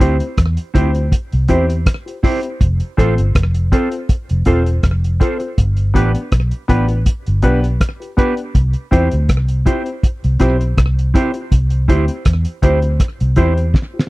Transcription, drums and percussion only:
0.00 kick, closed hi-hat
0.20 closed hi-hat
0.37 kick, cross-stick, closed hi-hat
0.57 closed hi-hat
0.75 kick, closed hi-hat
0.95 closed hi-hat
1.12 kick, closed hi-hat
1.32 closed hi-hat
1.48 kick, closed hi-hat
1.70 closed hi-hat
1.86 kick, cross-stick, closed hi-hat
2.08 closed hi-hat
2.24 kick, open hi-hat
2.43 closed hi-hat
2.61 kick, closed hi-hat
2.80 closed hi-hat
2.98 kick, closed hi-hat
3.18 closed hi-hat
3.35 kick, cross-stick, closed hi-hat
3.54 closed hi-hat
3.72 kick, closed hi-hat
3.92 closed hi-hat
4.09 kick, closed hi-hat
4.29 closed hi-hat
4.45 kick, closed hi-hat
4.66 closed hi-hat
4.83 kick, cross-stick, closed hi-hat
5.04 closed hi-hat
5.21 kick, closed hi-hat
5.40 closed hi-hat
5.58 kick, closed hi-hat
5.77 closed hi-hat
5.95 kick, closed hi-hat
6.15 closed hi-hat
6.32 kick, cross-stick, closed hi-hat
6.51 closed hi-hat
6.69 kick, closed hi-hat
6.88 closed hi-hat
7.06 kick, closed hi-hat
7.26 closed hi-hat
7.42 kick, closed hi-hat
7.64 closed hi-hat
7.81 kick, cross-stick, closed hi-hat
8.02 closed hi-hat
8.18 kick, closed hi-hat
8.37 closed hi-hat
8.55 kick, closed hi-hat
8.73 closed hi-hat
8.92 kick, closed hi-hat
9.11 closed hi-hat
9.29 kick, cross-stick, closed hi-hat
9.48 closed hi-hat
9.66 kick, closed hi-hat
9.86 closed hi-hat
10.03 kick, closed hi-hat
10.24 closed hi-hat
10.40 kick, cross-stick, closed hi-hat
10.61 closed hi-hat
10.77 kick, cross-stick, closed hi-hat
10.99 closed hi-hat
11.15 kick, closed hi-hat
11.34 closed hi-hat
11.52 kick, closed hi-hat
11.70 closed hi-hat
11.89 kick, closed hi-hat
12.08 closed hi-hat
12.25 kick, cross-stick, closed hi-hat
12.45 closed hi-hat
12.63 kick, closed hi-hat
12.82 closed hi-hat
13.00 kick, cross-stick, closed hi-hat
13.20 closed hi-hat
13.36 kick, closed hi-hat
13.57 closed hi-hat
13.74 kick, snare
13.99 snare

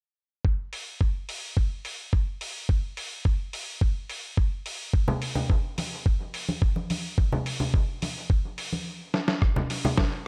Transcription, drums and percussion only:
0.45 kick
0.73 open hi-hat
1.01 kick
1.29 open hi-hat
1.57 kick
1.85 open hi-hat
2.13 kick
2.41 open hi-hat
2.69 kick
2.97 open hi-hat
3.25 kick
3.53 open hi-hat
3.81 kick
4.09 open hi-hat
4.37 kick
4.66 open hi-hat
4.94 kick
5.08 low conga
5.22 open hi-hat
5.35 low conga
5.50 kick
5.78 open hi-hat, high conga
6.06 kick
6.34 open hi-hat
6.49 high conga
6.62 kick
6.76 high conga
6.90 open hi-hat, high conga
7.18 kick
7.32 low conga
7.46 open hi-hat
7.60 low conga
7.74 kick
8.02 open hi-hat, high conga
8.30 kick
8.58 open hi-hat
8.73 high conga
9.14 snare
9.28 snare
9.42 kick, cross-stick
9.56 low conga
9.70 open hi-hat
9.85 low conga
9.98 kick, snare

